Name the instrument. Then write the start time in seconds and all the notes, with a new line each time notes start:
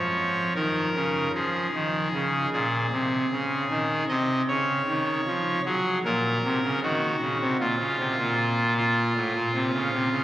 pipe organ
Already playing: F3 C#5
0.55 D#3 A#4
0.95 C#3
1.34 F3 G#4
1.74 D#3
2.13 C#3
2.53 A#2 G#4
2.92 C3
3.32 C#3
3.70 D#3
4.09 C3 D#5
4.48 C#3 C#5
4.88 D#3
5.27 F3
5.65 F#3 G#4
6.05 A#2 A#4
6.44 C3
6.63 C#3
6.83 D#3 F#4
7.21 C#3
7.41 C3
7.60 A#2 F4
7.80 C#3
7.99 C3
8.18 A#2
8.77 F4
9.16 A2
9.35 A#2
9.54 C3
9.73 C#3
9.93 C3
10.11 C#3